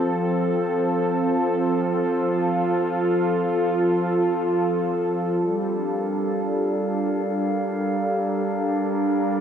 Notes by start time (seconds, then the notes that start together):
Already playing: F3 C4 F4 G4 A4 C5
5.38 G3 F5
5.70 D4
5.85 A#4